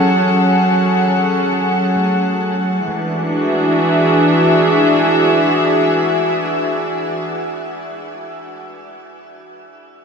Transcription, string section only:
0.00 2.86 F#3 medium
0.00 2.86 C#4 medium
0.00 2.88 G#4 medium
0.00 2.88 A4 medium
0.00 2.87 F#5 medium
2.86 7.24 E3 medium
3.01 7.24 D4 medium
3.14 7.24 F#4 medium
3.29 7.25 G#4 medium
3.41 7.24 E5 medium

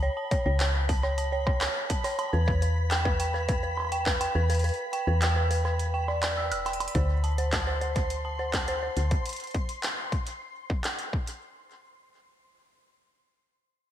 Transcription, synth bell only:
0.00 0.03 C#5 loud
0.00 0.31 C#5 loud
0.00 0.17 A5 loud
0.17 0.29 A5 loud
0.31 0.44 C#5 loud
0.46 0.53 C#5 loud
0.60 0.73 C#5 medium
0.89 0.96 A5 loud
1.03 1.11 C#5 loud
1.18 1.30 A5 loud
1.32 1.45 C#5 loud
1.47 1.54 C#5 loud
1.61 1.74 C#5 medium
1.90 1.97 A5 loud
2.04 2.12 C#5 loud
2.19 2.31 A5 loud
2.33 2.46 B4 loud
2.47 2.55 B4 loud
2.62 2.74 B4 medium
2.91 2.98 G5 loud
3.05 3.13 B4 loud
3.20 3.32 G5 loud
3.34 3.47 B4 loud
3.49 3.56 B4 loud
3.63 3.76 B4 medium
3.92 3.99 G5 loud
4.06 4.14 B4 loud
4.21 4.33 G5 loud
4.35 4.48 B4 loud
4.50 4.57 B4 loud
4.64 4.77 B4 medium
4.93 5.00 G5 loud
5.07 5.15 B4 loud
5.22 5.34 G5 loud
5.36 5.49 B4 loud
5.51 5.58 B4 loud
5.65 5.77 B4 medium
5.94 6.01 G5 loud
6.08 6.16 D5 medium
6.23 6.30 D5 medium
6.37 6.50 E6 medium
6.52 6.59 E6 medium
6.66 6.80 G5 medium
6.95 7.07 C5 medium
7.24 7.31 A5 loud
7.38 7.46 C5 medium
7.53 7.65 A5 loud
7.67 7.79 C5 loud
7.81 7.89 C5 medium
7.96 8.08 C5 medium
8.25 8.32 A5 loud
8.39 8.47 C5 loud
8.54 8.66 A5 loud
8.68 8.81 C5 loud
8.83 8.90 C5 loud
8.97 9.09 C5 medium

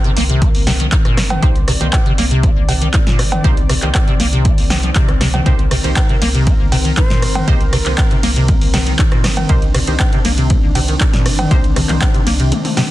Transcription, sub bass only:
0.17 0.50 C2 loud
0.55 0.87 C2 medium
1.05 1.38 G1 medium
1.43 1.76 C2 medium
1.81 1.90 C2 medium
2.18 2.51 C2 loud
2.56 2.89 C2 medium
3.07 3.40 G1 medium
3.44 3.77 C2 loud
3.83 3.92 C2 medium
4.20 4.53 C2 loud
4.58 4.91 C2 medium
5.09 5.41 C2 loud
5.46 5.79 C2 medium
5.84 5.93 C2 medium
6.22 6.55 C2 loud
6.60 6.93 C2 medium
7.10 7.43 G1 medium
7.48 7.81 C2 medium
7.86 7.95 C2 medium
8.23 8.56 C2 loud
8.61 8.94 C2 medium
9.12 9.45 G1 loud
9.49 9.83 C2 loud
9.88 9.97 C2 medium
10.25 10.58 C2 loud
10.63 10.96 C2 medium
11.14 11.46 G1 loud
11.51 11.84 C2 loud
11.89 11.98 C2 medium
12.27 12.52 C2 loud

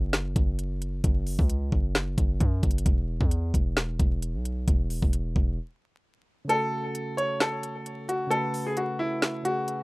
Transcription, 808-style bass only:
0.00 0.34 F#1 loud
0.36 1.01 F#1 loud
1.04 1.37 F#1 loud
1.39 1.71 C#2 loud
1.72 2.16 F#1 loud
2.18 2.40 F#1 loud
2.40 2.62 F#2 loud
2.63 2.85 F#1 loud
2.86 3.19 E1 loud
3.21 3.53 E2 loud
3.54 3.98 E1 loud
3.99 4.36 E1 loud
4.34 4.66 B1 loud
4.68 5.01 E1 loud
5.02 5.34 E1 loud
5.36 5.59 E1 loud

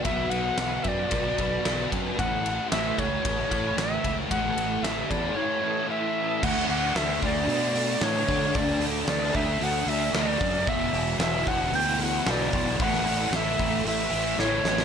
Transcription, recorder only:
0.04 0.32 E5 medium
0.30 0.85 F#5 loud
0.83 0.89 E5 medium
0.88 1.90 D5 medium
2.19 2.68 F#5 loud
2.71 3.01 E5 medium
2.99 3.79 C#5 medium
3.78 4.17 E5 loud
4.31 4.85 F#5 loud
4.83 5.12 E5 medium
5.10 5.37 D5 medium
5.36 5.89 C#5 medium
5.90 6.45 E5 medium
6.44 6.69 F#5 loud
6.69 6.98 F#5 medium
6.96 7.22 E5 medium
7.25 8.05 D5 medium
8.03 8.58 C#5 medium
8.56 8.85 D5 loud
9.09 9.37 D5 medium
9.36 9.65 E5 loud
9.63 9.90 F#5 loud
9.89 10.16 E5 medium
10.15 10.70 D5 loud
10.69 11.19 E5 loud
11.20 11.50 E5 loud
11.48 11.77 F#5 loud
11.75 12.04 G5 loud
12.02 12.32 F#5 loud
12.30 12.81 D5 loud
12.83 13.38 F#5 medium
13.36 13.87 E5 loud
13.87 14.41 E5 medium
14.40 14.85 C#5 medium

